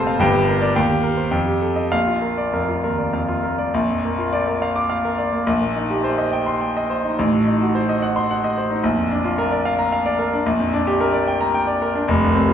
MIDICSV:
0, 0, Header, 1, 2, 480
1, 0, Start_track
1, 0, Key_signature, -2, "major"
1, 0, Tempo, 552486
1, 187, Time_signature, 3, 2, 24, 8
1, 1154, Tempo, 606061
1, 3074, Tempo, 571429
1, 5954, Tempo, 544465
1, 10673, End_track
2, 0, Start_track
2, 0, Title_t, "Grand piano"
2, 0, Program_c, 0, 0
2, 0, Control_c, 0, 64, 127
2, 0, Note_on_c, 0, 29, 90
2, 0, Note_on_c, 0, 41, 97
2, 0, Note_on_c, 0, 46, 59
2, 0, Note_on_c, 0, 48, 56
2, 0, Note_on_c, 0, 60, 68
2, 0, Note_on_c, 0, 69, 70
2, 0, Note_on_c, 0, 72, 74
2, 0, Note_on_c, 0, 77, 58
2, 0, Note_on_c, 0, 81, 68
2, 60, Note_off_c, 0, 77, 0
2, 60, Note_on_c, 0, 77, 67
2, 92, Note_off_c, 0, 48, 0
2, 136, Note_off_c, 0, 72, 0
2, 151, Note_off_c, 0, 29, 0
2, 153, Note_off_c, 0, 41, 0
2, 165, Note_on_c, 0, 31, 83
2, 176, Note_on_c, 0, 79, 100
2, 177, Note_on_c, 0, 43, 96
2, 181, Note_off_c, 0, 77, 0
2, 183, Note_off_c, 0, 60, 0
2, 200, Control_c, 0, 64, 0
2, 203, Note_off_c, 0, 46, 0
2, 204, Note_off_c, 0, 81, 0
2, 208, Note_off_c, 0, 69, 0
2, 292, Note_on_c, 0, 67, 59
2, 341, Control_c, 0, 64, 127
2, 370, Note_off_c, 0, 79, 0
2, 423, Note_on_c, 0, 70, 71
2, 490, Note_off_c, 0, 67, 0
2, 536, Note_on_c, 0, 74, 76
2, 617, Note_off_c, 0, 70, 0
2, 640, Note_off_c, 0, 31, 0
2, 646, Note_off_c, 0, 43, 0
2, 658, Note_on_c, 0, 79, 92
2, 660, Note_on_c, 0, 39, 90
2, 661, Note_off_c, 0, 74, 0
2, 679, Control_c, 0, 64, 0
2, 783, Note_on_c, 0, 67, 66
2, 840, Control_c, 0, 64, 127
2, 856, Note_off_c, 0, 79, 0
2, 897, Note_on_c, 0, 70, 65
2, 979, Note_off_c, 0, 67, 0
2, 1018, Note_on_c, 0, 72, 56
2, 1099, Note_off_c, 0, 70, 0
2, 1137, Note_off_c, 0, 39, 0
2, 1140, Note_on_c, 0, 79, 75
2, 1141, Note_on_c, 0, 41, 79
2, 1148, Note_off_c, 0, 72, 0
2, 1167, Control_c, 0, 64, 0
2, 1258, Note_on_c, 0, 67, 61
2, 1329, Control_c, 0, 64, 127
2, 1335, Note_off_c, 0, 79, 0
2, 1377, Note_on_c, 0, 69, 61
2, 1456, Note_off_c, 0, 67, 0
2, 1495, Note_on_c, 0, 75, 61
2, 1578, Note_off_c, 0, 69, 0
2, 1612, Note_off_c, 0, 41, 0
2, 1620, Note_on_c, 0, 77, 97
2, 1622, Note_on_c, 0, 34, 74
2, 1625, Note_off_c, 0, 75, 0
2, 1647, Control_c, 0, 64, 0
2, 1743, Note_on_c, 0, 65, 60
2, 1774, Control_c, 0, 64, 127
2, 1821, Note_off_c, 0, 77, 0
2, 1859, Note_on_c, 0, 70, 59
2, 1941, Note_off_c, 0, 65, 0
2, 1984, Note_on_c, 0, 74, 64
2, 2057, Note_off_c, 0, 70, 0
2, 2107, Note_on_c, 0, 41, 60
2, 2110, Note_on_c, 0, 70, 73
2, 2179, Note_off_c, 0, 74, 0
2, 2230, Note_on_c, 0, 65, 56
2, 2301, Note_off_c, 0, 70, 0
2, 2351, Note_on_c, 0, 70, 61
2, 2354, Note_on_c, 0, 39, 49
2, 2420, Note_off_c, 0, 65, 0
2, 2467, Note_on_c, 0, 74, 50
2, 2489, Note_off_c, 0, 41, 0
2, 2540, Note_off_c, 0, 70, 0
2, 2583, Note_on_c, 0, 41, 56
2, 2584, Note_on_c, 0, 77, 58
2, 2590, Note_off_c, 0, 39, 0
2, 2658, Note_off_c, 0, 74, 0
2, 2703, Note_on_c, 0, 65, 64
2, 2780, Note_off_c, 0, 77, 0
2, 2821, Note_on_c, 0, 58, 53
2, 2822, Note_on_c, 0, 70, 56
2, 2903, Note_off_c, 0, 65, 0
2, 2941, Note_on_c, 0, 74, 60
2, 2976, Note_off_c, 0, 41, 0
2, 3022, Note_off_c, 0, 70, 0
2, 3037, Note_off_c, 0, 34, 0
2, 3064, Note_on_c, 0, 34, 92
2, 3068, Note_off_c, 0, 74, 0
2, 3070, Note_off_c, 0, 58, 0
2, 3093, Control_c, 0, 64, 0
2, 3199, Note_on_c, 0, 41, 55
2, 3241, Control_c, 0, 64, 127
2, 3323, Note_on_c, 0, 58, 64
2, 3396, Note_off_c, 0, 41, 0
2, 3438, Note_on_c, 0, 65, 63
2, 3517, Note_off_c, 0, 58, 0
2, 3556, Note_on_c, 0, 74, 77
2, 3633, Note_off_c, 0, 65, 0
2, 3680, Note_on_c, 0, 70, 63
2, 3751, Note_off_c, 0, 74, 0
2, 3802, Note_on_c, 0, 77, 76
2, 3872, Note_off_c, 0, 70, 0
2, 3918, Note_on_c, 0, 86, 78
2, 3991, Note_off_c, 0, 77, 0
2, 4034, Note_on_c, 0, 77, 73
2, 4108, Note_off_c, 0, 86, 0
2, 4161, Note_on_c, 0, 70, 68
2, 4225, Note_off_c, 0, 77, 0
2, 4275, Note_on_c, 0, 74, 70
2, 4349, Note_off_c, 0, 70, 0
2, 4395, Note_on_c, 0, 58, 63
2, 4466, Note_off_c, 0, 74, 0
2, 4475, Note_off_c, 0, 34, 0
2, 4513, Note_on_c, 0, 34, 93
2, 4514, Note_off_c, 0, 58, 0
2, 4529, Control_c, 0, 64, 0
2, 4640, Note_on_c, 0, 46, 57
2, 4655, Control_c, 0, 64, 127
2, 4761, Note_on_c, 0, 63, 63
2, 4830, Note_off_c, 0, 46, 0
2, 4881, Note_on_c, 0, 67, 59
2, 4951, Note_off_c, 0, 63, 0
2, 4994, Note_on_c, 0, 72, 73
2, 5071, Note_off_c, 0, 67, 0
2, 5114, Note_on_c, 0, 75, 68
2, 5189, Note_off_c, 0, 72, 0
2, 5236, Note_on_c, 0, 79, 78
2, 5309, Note_off_c, 0, 75, 0
2, 5352, Note_on_c, 0, 84, 76
2, 5431, Note_off_c, 0, 79, 0
2, 5472, Note_on_c, 0, 79, 68
2, 5549, Note_off_c, 0, 84, 0
2, 5605, Note_on_c, 0, 75, 71
2, 5668, Note_off_c, 0, 79, 0
2, 5717, Note_on_c, 0, 72, 66
2, 5792, Note_off_c, 0, 75, 0
2, 5844, Note_on_c, 0, 63, 58
2, 5906, Note_off_c, 0, 72, 0
2, 5920, Note_off_c, 0, 34, 0
2, 5958, Note_off_c, 0, 63, 0
2, 5961, Note_on_c, 0, 33, 87
2, 5970, Control_c, 0, 64, 0
2, 6082, Note_on_c, 0, 45, 57
2, 6132, Control_c, 0, 64, 127
2, 6211, Note_on_c, 0, 63, 61
2, 6277, Note_off_c, 0, 45, 0
2, 6334, Note_on_c, 0, 66, 65
2, 6403, Note_off_c, 0, 63, 0
2, 6454, Note_on_c, 0, 72, 74
2, 6526, Note_off_c, 0, 66, 0
2, 6580, Note_on_c, 0, 75, 74
2, 6647, Note_off_c, 0, 72, 0
2, 6696, Note_on_c, 0, 78, 74
2, 6770, Note_off_c, 0, 75, 0
2, 6817, Note_on_c, 0, 84, 89
2, 6888, Note_off_c, 0, 78, 0
2, 6946, Note_on_c, 0, 78, 71
2, 7008, Note_off_c, 0, 84, 0
2, 7065, Note_on_c, 0, 75, 74
2, 7132, Note_off_c, 0, 78, 0
2, 7184, Note_on_c, 0, 72, 67
2, 7252, Note_off_c, 0, 75, 0
2, 7296, Note_on_c, 0, 63, 66
2, 7372, Note_off_c, 0, 72, 0
2, 7383, Note_off_c, 0, 33, 0
2, 7412, Note_on_c, 0, 34, 92
2, 7416, Note_off_c, 0, 63, 0
2, 7431, Control_c, 0, 64, 0
2, 7534, Note_on_c, 0, 41, 57
2, 7587, Control_c, 0, 64, 127
2, 7658, Note_on_c, 0, 62, 65
2, 7728, Note_off_c, 0, 41, 0
2, 7775, Note_on_c, 0, 65, 73
2, 7849, Note_off_c, 0, 62, 0
2, 7896, Note_on_c, 0, 70, 84
2, 7966, Note_off_c, 0, 65, 0
2, 8014, Note_on_c, 0, 74, 68
2, 8085, Note_off_c, 0, 70, 0
2, 8134, Note_on_c, 0, 77, 75
2, 8203, Note_off_c, 0, 74, 0
2, 8251, Note_on_c, 0, 82, 85
2, 8322, Note_off_c, 0, 77, 0
2, 8372, Note_on_c, 0, 77, 75
2, 8441, Note_off_c, 0, 82, 0
2, 8489, Note_on_c, 0, 74, 75
2, 8561, Note_off_c, 0, 77, 0
2, 8606, Note_on_c, 0, 70, 76
2, 8679, Note_off_c, 0, 74, 0
2, 8734, Note_on_c, 0, 62, 64
2, 8796, Note_off_c, 0, 70, 0
2, 8807, Note_off_c, 0, 34, 0
2, 8846, Note_on_c, 0, 34, 96
2, 8848, Note_off_c, 0, 62, 0
2, 8857, Control_c, 0, 64, 0
2, 8966, Note_on_c, 0, 41, 64
2, 9003, Control_c, 0, 64, 127
2, 9089, Note_on_c, 0, 62, 80
2, 9154, Note_off_c, 0, 41, 0
2, 9208, Note_on_c, 0, 67, 81
2, 9275, Note_off_c, 0, 62, 0
2, 9326, Note_on_c, 0, 70, 82
2, 9394, Note_off_c, 0, 67, 0
2, 9434, Note_on_c, 0, 74, 77
2, 9513, Note_off_c, 0, 70, 0
2, 9563, Note_on_c, 0, 79, 84
2, 9626, Note_off_c, 0, 74, 0
2, 9678, Note_on_c, 0, 82, 86
2, 9751, Note_off_c, 0, 79, 0
2, 9801, Note_on_c, 0, 79, 84
2, 9869, Note_off_c, 0, 82, 0
2, 9913, Note_on_c, 0, 74, 72
2, 9992, Note_off_c, 0, 79, 0
2, 10043, Note_on_c, 0, 70, 76
2, 10109, Note_off_c, 0, 74, 0
2, 10161, Note_on_c, 0, 62, 70
2, 10235, Note_off_c, 0, 70, 0
2, 10247, Note_off_c, 0, 34, 0
2, 10275, Note_on_c, 0, 29, 106
2, 10281, Note_off_c, 0, 62, 0
2, 10297, Control_c, 0, 64, 0
2, 10403, Note_on_c, 0, 36, 68
2, 10451, Control_c, 0, 64, 127
2, 10515, Note_on_c, 0, 60, 78
2, 10590, Note_off_c, 0, 36, 0
2, 10630, Note_on_c, 0, 65, 70
2, 10673, Note_off_c, 0, 29, 0
2, 10673, Note_off_c, 0, 60, 0
2, 10673, Note_off_c, 0, 65, 0
2, 10673, End_track
0, 0, End_of_file